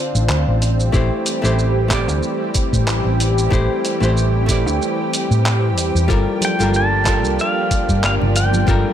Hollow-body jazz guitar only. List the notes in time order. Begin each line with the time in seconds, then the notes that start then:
Already playing: D3 C4 F4 F5
0.92 A3 E4 G4 C5
1.42 A3 E4 G4 C5
1.88 A3 E4 G4
1.94 D5
3.50 A3 E4 G4 C5
4.00 A3 E4 G4 C5
4.46 A3 E4
4.50 G4 D5
6.08 G3 F4 A4 A#4
6.59 G3 F4 A4 A#4
7.04 G3 F4 A4
7.10 A#4
8.67 G3 F4 A4 A#4